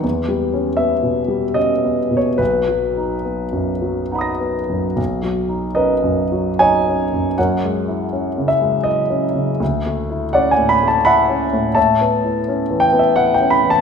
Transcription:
<<
  \new Staff \with { instrumentName = "Grand piano" } { \time 3/4 \key b \major \tempo 4 = 80 << { r2. | r2 <fis'' b'' dis''' ais'''>4 | r4 <ais' b'>4 <cis'' dis''>4 | <ais' cis''>4. r4. |
r4 <cis'' d''>16 r8. <e'' fis''>4 | <cis'' e''>4. r4. | } \\ { r4 e''4 dis''8. cis''16 | b'2~ b'8 r8 | r4 dis''4 gis''4 | fis''4. e''8 dis''4 |
r4 fis''16 gis''16 b''16 a''16 b''4 | a''4. g''16 e''16 fis''16 g''16 b''16 a''16 | } >> }
  \new Staff \with { instrumentName = "Grand piano" } { \time 3/4 \key b \major \tuplet 3/2 { e,8 g8 cis'8 b8 b,8 g8 cis'8 b8 b,8 } | \tuplet 3/2 { b,,8 fis8 dis'8 b8 fis,8 fis8 dis'8 b8 fis,8 } | \tuplet 3/2 { b,,8 fis8 dis'8 cis'8 fis,8 fis8 dis'8 cis'8 fis,8 } | \tuplet 3/2 { fis,8 gis8 e'8 cis'8 cis8 gis8 e'8 cis'8 cis8 } |
\tuplet 3/2 { d,8 a8 e'8 cis'8 a,8 a8 e'8 cis'8 a,8 } | \tuplet 3/2 { a,8 b8 e'8 cis'8 e8 b8 e'8 cis'8 e8 } | }
>>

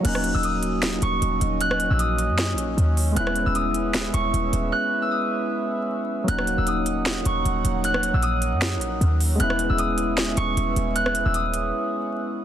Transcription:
<<
  \new Staff \with { instrumentName = "Harp" } { \time 4/4 \key ees \phrygian \tempo 4 = 154 ges'''8. fes'''16 ees'''4. des'''4. | ges'''8. fes'''16 ees'''2. | ges'''8. fes'''16 ees'''4. des'''4. | ges'''8. fes'''16 ees'''2. |
ges'''8. fes'''16 ees'''4. des'''4. | ges'''8. fes'''16 ees'''2. | ges'''8. fes'''16 ees'''4. des'''4. | ges'''8. fes'''16 ees'''2. | }
  \new Staff \with { instrumentName = "Brass ensemble" } { \time 4/4 \key ees \phrygian << { <ges' ees''>1~ | <ges' ees''>1 | <ces'' fes''>1~ | <ces'' fes''>1 |
<des'' ges''>1~ | <des'' ges''>1 | <ces'' fes''>1~ | <ces'' fes''>1 | } \\ { des'1~ | des'1~ | des'1~ | des'1 |
ees'1~ | ees'1 | des'1~ | des'1 | } >> }
  \new Staff \with { instrumentName = "Synth keys" } { \time 4/4 \key ees \phrygian <ges bes des' ees'>1~ | <ges bes des' ees'>1 | <aes ces' des' fes'>1~ | <aes ces' des' fes'>1 |
<ges bes des' ees'>1~ | <ges bes des' ees'>1 | <aes ces' des' fes'>1~ | <aes ces' des' fes'>1 | }
  \new Staff \with { instrumentName = "808-style bass" } { \clef bass \time 4/4 \key ees \phrygian ees,,8. ees,,4.~ ees,,16 ees,,8 ees,,8 ees,,8~ | ees,,8. bes,,4 ges,8~ ges,32 bes,,8~ bes,,32 ees,4 | ees,,8. ees,,4.~ ees,,16 ees,,8 ees,,8 ees,,8 | r1 |
ees,,8. ees,,4.~ ees,,16 ees,,8 ees,,8 ees,,8~ | ees,,8. bes,,4 ges,8~ ges,32 bes,,8~ bes,,32 ees,4 | ees,,8. ees,,4.~ ees,,16 ees,,8 ees,,8 ees,,8~ | ees,,8. ees,,4~ ees,,16 r2 | }
  \new DrumStaff \with { instrumentName = "Drums" } \drummode { \time 4/4 <cymc hh>16 ss16 hh8 hh8 hh8 <hh sn>8 hh8 hh8 hh8 | hh16 ss16 hh8 hh8 hh8 <hh sn>8 hh8 hh8 hho8 | hh16 ss16 hh8 hh8 hh8 <hh sn>8 hh8 hh8 hh8 | r4 r4 r4 r4 |
hh16 ss16 hh8 hh8 hh8 <hh sn>8 hh8 hh8 hh8 | hh16 ss16 hh8 hh8 hh8 <hh sn>8 hh8 hh8 hho8 | hh16 ss16 hh8 hh8 hh8 <hh sn>8 hh8 hh8 hh8 | hh16 ss16 hh8 hh8 hh8 r4 r4 | }
>>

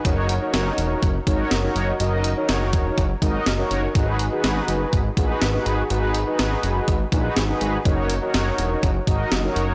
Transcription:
<<
  \new Staff \with { instrumentName = "Analog polysynth" } { \time 4/4 \key fis \mixolydian \tempo 4 = 123 <dis' fis' ais' cis''>8 r16 <dis' fis' ais' cis''>4. r16 <dis' fis' ais' cis''>8 r16 <dis' fis' ais' cis''>8 r16 | <dis' fis' ais' dis''>8 r16 <dis' fis' ais' cis''>4. r16 <dis' fis' ais' dis''>8 r16 <dis' fis' ais' cis''>8 r16 | <dis' fis' gis' b'>8 r16 <dis' fis' gis' b'>4. r16 <dis' fis' gis' b'>8 r16 <dis' fis' gis' b'>8 r16 | <dis' fis' gis' b'>8 r16 <dis' fis' gis' b'>4. r16 <dis' fis' gis' b'>8 r16 <dis' fis' gis' b'>8 r16 |
<dis' fis' ais' cis''>8 r16 <dis' fis' ais' cis''>4. r16 <dis' fis' ais' dis''>8 r16 <dis' fis' ais' cis''>8 r16 | }
  \new Staff \with { instrumentName = "Analog synth bass" } { \clef bass \time 4/4 \key fis \mixolydian fis,,4 fis,,8 e,,8 fis,,8 gis,,8 fis,,8 fis,,8 | fis,,4 fis,,8 e,,8 fis,,8 gis,,8 fis,,8 fis,,8 | gis,,4 gis,,8 fis,,8 gis,,8 ais,,8 gis,,8 gis,,8 | gis,,4 gis,,8 fis,,8 gis,,8 ais,,8 gis,,8 gis,,8 |
fis,,4 fis,,8 e,,8 fis,,8 gis,,8 fis,,8 fis,,8 | }
  \new DrumStaff \with { instrumentName = "Drums" } \drummode { \time 4/4 <hh bd>8 hh8 <hh sn>8 hh8 <hh bd>8 <hh bd>8 <hh sn>8 hh8 | hh8 hh8 <hh sn>8 <hh bd>8 <hh bd>8 <hh bd>8 <hh sn>8 hh8 | <hh bd>8 hh8 <hh sn>8 hh8 <hh bd>8 <hh bd>8 <hh sn>8 hh8 | hh8 hh8 <hh sn>8 hh8 <hh bd>8 <hh bd>8 <hh sn>8 hh8 |
<hh bd>8 hh8 <hh sn>8 hh8 <hh bd>8 <hh bd>8 <hh sn>8 hh8 | }
>>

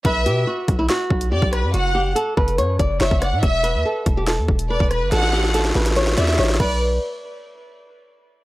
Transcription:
<<
  \new Staff \with { instrumentName = "Violin section" } { \time 4/4 \key b \minor \tempo 4 = 142 e''4 r2 d''8 b'8 | fis''4 r2 e''8 fis''8 | e''4 r2 d''8 b'8 | fis''4 r4. e''8 r8 d''8 |
r1 | }
  \new Staff \with { instrumentName = "Nylon-string guitar" } { \time 4/4 \key b \minor b'8 g'8 fis'8. e'16 fis'4 g'4 | fis'8 g'8 a'8 b'8 cis''8 d''8 cis''8 d''8 | e''8 b'8 a'8. g'16 a'4 b'4 | a'8 g'8 a'8 b'8 cis''8 d''8 cis''8 b'8 |
r1 | }
  \new Staff \with { instrumentName = "808-style bass" } { \clef bass \time 4/4 \key b \minor b,,8 b,8 r8 b,,8 r8 b,,8 fis,16 b,,8 fis,16 | fis,,4 r8 fis,,8 fis,8 fis,,8 fis,,16 fis,,8 a,16 | e,,8. e,16 r8 e,,8. e,16 e,,8. e,,8 g,,16 | a,,4. a,,4 e,8 a,,8 b,,8~ |
b,,8 r2. r8 | }
  \new DrumStaff \with { instrumentName = "Drums" } \drummode { \time 4/4 <hh bd>8 hh8 r8 <hh bd>8 <hh sn>8 bd16 hh16 r16 bd16 <hh ss>8 | hh4 hh8 bd16 hh16 hh8 <hh bd>8 sn16 bd16 <hh ss>8 | <hh bd>8 hh8 r8 <hh bd>8 <hh sn>8 bd16 hh16 r16 bd16 <hh ss>8 | <hh sn>32 sn32 sn32 sn32 sn32 sn32 sn32 sn32 <hh sn>32 sn32 sn32 sn32 sn32 sn32 <hh sn>32 sn32 <hh sn>32 sn32 sn32 sn32 <hh sn>32 sn32 sn32 sn32 sn32 sn32 sn32 sn32 <cymc bd>8 |
r4 r4 r4 r4 | }
>>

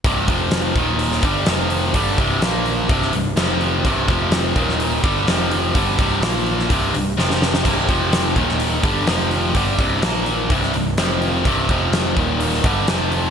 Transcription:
<<
  \new Staff \with { instrumentName = "Distorted electric guitar" } { \clef bass \time 4/4 \key c \minor \tempo 4 = 126 <c, g, c>8 <f, c f>4 <ees, bes, ees>4 <g, d g>8 <f, c f>4 | <g, d g>8 <c, g, c>8 <bes, f bes>4 <c, g, c>8 <c, g,>8 <f, c f>4 | <c, g, c>8 <f, c f>4 <ees, bes, ees>4 <g, d g>8 <f, c f>4 | <g, d g>8 <c, g, c>8 <bes, f bes>4 <c, g, c>8 <c, g,>8 <f, c f>4 |
<c, g, c>8 <f, c f>4 <ees, bes, ees>4 <g, d g>8 <f, c f>4 | <g, d g>8 <c, g, c>8 <bes, f bes>4 <c, g, c>8 <c, g,>8 <f, c f>4 | <c, g, c>8 <f, c f>4 <ees, bes, ees>4 <g, d g>8 <f, c f>4 | }
  \new Staff \with { instrumentName = "Picked electric bass" } { \clef bass \time 4/4 \key c \minor c,,8 f,,4 ees,,4 g,,8 f,,4 | g,,8 c,,8 bes,,4 c,,8 c,,8 f,,4 | c,,8 f,,4 ees,,4 g,,8 f,,4 | g,,8 c,,8 bes,,4 c,,8 c,,8 f,,4 |
c,,8 f,,4 ees,,4 g,,8 f,,4 | g,,8 c,,8 bes,,4 c,,8 c,,8 f,,4 | c,,8 f,,4 ees,,4 g,,8 f,,4 | }
  \new DrumStaff \with { instrumentName = "Drums" } \drummode { \time 4/4 <hho bd>8 <hho bd>8 <hho sn>8 <hho bd>8 hho16 sn16 <hho bd>8 <hho sn>8 hho8 | <hho bd>8 <hho bd>8 <hho sn>8 hho8 <hho bd>16 sn16 hho8 <hho sn>8 hho8 | <hho bd>8 <hho bd>8 <hho sn>8 <hho bd>16 sn16 hho8 <hho bd>8 <hho sn>8 hho8 | <hho bd>8 <hho bd>8 <hho sn>8 hho16 sn16 <hho bd>8 hho8 sn16 sn16 sn16 sn16 |
<cymc hho bd>8 <hho bd>8 <hho sn>8 <hho bd>16 sn16 hho8 <hho bd>8 <hho sn>8 hho8 | <hho bd>8 <hho bd>8 <hho sn>8 hho8 <hho bd>16 sn16 hho8 <hho sn>8 hho8 | <hho bd>8 <hho bd>8 <hho sn>8 <hho bd>8 hho16 sn16 <hho bd>8 <hho sn>8 hho8 | }
>>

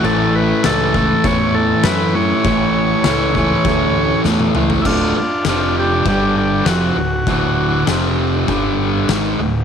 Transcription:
<<
  \new Staff \with { instrumentName = "Transistor combo organ" } { \time 4/4 \key a \mixolydian \tempo 4 = 99 a'8 b'8 a'4 cis''8 a'8 b'8 cis''8~ | cis''2. r4 | <d' e' f'>8 <d' f'>8 <d' f'>8 <d' g'>8 <d' g'>8 <d' g'>8 fis'4~ | fis'4 r2. | }
  \new Staff \with { instrumentName = "Distorted electric guitar" } { \clef bass \time 4/4 \key a \mixolydian <a, e a>4 <a, e a>8 <a, e a>8 <a, e a>4 <a, e a>8 <a, e a>8 | <a, e a>4 <a, e a>8 <a, e a>8 <a, e a>4 <a, e a>8 <a, e a>8 | <d, a, d>8 r8 <f, c f>4 <g, d g>4 <f, c f>8 <d, a,>8 | <d, a, d>4 <f, c f>4 <g, d g>4 <gis, ees gis>8 <d, a,>8 | }
  \new Staff \with { instrumentName = "Fingered electric bass" } { \clef bass \time 4/4 \key a \mixolydian a,,4 cis,4 e,4 fis,4 | a,,4 cis,4 d,4 e,8 cis,8 | d,,8 r8 f,,4 g,,4 f,,8 d,,8 | d,,4 f,,4 g,,4 gis,,8 d,,8 | }
  \new DrumStaff \with { instrumentName = "Drums" } \drummode { \time 4/4 cymc4 <cymc sn>8 bd8 <cymc bd>4 <cymc sn>4 | <cymc bd>4 <cymc sn>8 bd8 <cymc bd>4 sn16 tommh16 toml16 tomfh16 | <cymc bd>4 <cymc sn>4 <cymc bd>4 <cymc sn>4 | <cymc bd>4 <cymc sn>4 <cymc bd>4 <cymc sn>4 | }
>>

